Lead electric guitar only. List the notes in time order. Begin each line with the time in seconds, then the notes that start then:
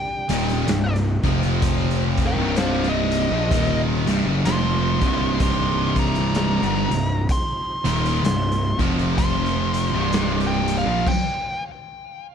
Already playing: G5
2.26 A#4 G5
2.57 C5 F5
2.89 D#5
4.46 C6
5.42 C6
6.00 A#5
7.32 C6
8.25 C6
9.19 C6
10.47 G5
10.78 F5
11.09 G5